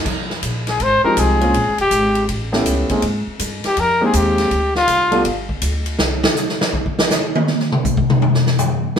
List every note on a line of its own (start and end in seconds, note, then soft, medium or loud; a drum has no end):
0.05 0.41 F2 medium
0.05 kick medium
0.05 crash medium
0.30 snare soft
0.42 0.79 A#1 medium
0.42 kick soft
0.42 hi-hat pedal medium
0.42 ride medium
0.67 0.84 G#4 medium
0.67 snare soft
0.67 ride soft
0.80 1.02 G#1 medium
0.80 1.04 C5 medium
0.80 kick soft
0.80 ride medium
1.03 1.39 F3 medium
1.03 1.39 G#3 medium
1.03 1.39 C4 medium
1.03 1.39 D#4 medium
1.03 1.39 G4 medium
1.03 1.21 A#4 medium
1.03 muted upright bass stroke soft
1.17 1.53 C2 medium
1.17 1.79 G#4 medium
1.17 kick soft
1.17 hi-hat pedal medium
1.17 ride medium
1.41 1.53 G#3 medium
1.41 1.53 A#3 medium
1.41 1.53 C4 medium
1.41 1.53 C#4 medium
1.41 1.53 F4 medium
1.41 ride soft
1.54 1.66 A#1 medium
1.54 kick soft
1.54 ride medium
1.66 1.78 G#1 medium
1.78 1.90 F1 medium
1.78 2.26 G4 medium
1.78 ride soft
1.91 2.27 G#1 medium
1.91 kick soft
1.91 hi-hat pedal medium
1.91 ride medium
2.15 ride soft
2.28 2.64 A1 medium
2.28 kick soft
2.28 ride medium
2.52 2.87 A3 medium
2.52 2.87 B3 medium
2.52 2.87 C#4 medium
2.52 2.87 E4 medium
2.52 2.87 G4 medium
2.52 snare medium
2.66 2.88 C#2 medium
2.66 kick soft
2.66 hi-hat pedal medium
2.66 ride medium
2.89 3.02 G#3 medium
2.89 3.02 A#3 medium
2.89 3.02 C4 medium
2.89 3.02 D#4 medium
2.89 3.02 G#4 medium
2.89 muted upright bass stroke soft
2.89 kick medium
2.89 ride soft
3.02 3.25 G#2 medium
3.02 kick soft
3.02 ride medium
3.27 muted upright bass stroke soft
3.39 3.62 G2 medium
3.39 kick soft
3.39 hi-hat pedal medium
3.39 ride medium
3.64 3.82 G4 medium
3.64 muted upright bass stroke soft
3.64 snare soft
3.64 ride soft
3.77 4.13 F2 medium
3.77 4.03 A#4 loud
3.77 kick soft
3.77 ride medium
4.01 4.49 G#3 medium
4.01 4.49 A#3 medium
4.01 4.49 C4 medium
4.01 4.49 D#4 medium
4.01 4.49 G4 medium
4.05 4.18 G#4 medium
4.13 4.50 D#2 loud
4.13 4.76 G4 medium
4.13 kick soft
4.13 hi-hat pedal medium
4.13 ride medium
4.38 snare soft
4.38 ride soft
4.51 4.87 D2 medium
4.51 kick soft
4.51 ride soft
4.75 5.23 F4 loud
4.75 snare soft
4.87 5.24 C2 medium
4.87 kick soft
4.87 hi-hat pedal medium
4.87 ride medium
5.11 5.24 G3 medium
5.11 5.24 A3 medium
5.11 5.24 B3 medium
5.11 5.24 D4 medium
5.11 5.24 F4 medium
5.11 ride soft
5.25 5.61 G1 medium
5.25 kick soft
5.25 ride medium
5.49 kick medium
5.61 5.97 D2 medium
5.61 kick soft
5.61 hi-hat pedal medium
5.61 ride medium
5.86 ride soft
5.98 6.22 C2 medium
5.98 snare medium
6.24 snare medium
6.36 snare soft
6.36 hi-hat pedal medium
6.49 snare soft
6.61 snare medium
6.73 kick medium
6.86 kick medium
6.99 snare loud
7.10 snare medium
7.10 hi-hat pedal medium
7.35 high tom loud
7.47 snare soft
7.60 snare soft
7.72 mid tom loud
7.85 kick medium
7.85 hi-hat pedal medium
7.97 kick medium
8.10 mid tom loud
8.22 floor tom medium
8.34 snare soft
8.47 snare soft
8.58 floor tom medium
8.58 hi-hat pedal medium